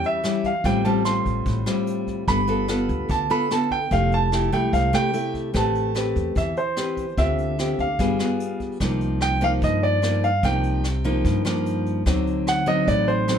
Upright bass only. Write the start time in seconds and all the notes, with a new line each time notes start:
0.64 A1
1.26 A1
1.46 A1
2.28 G1
2.89 D2
3.10 D2
3.91 F1
4.53 C2
4.73 C2
5.55 A1
6.16 E2
6.36 E2
7.18 D2
7.79 D2
7.99 G1
8.81 C2
9.62 G2
10.43 C2
11.25 G2
12.06 D2
12.88 A1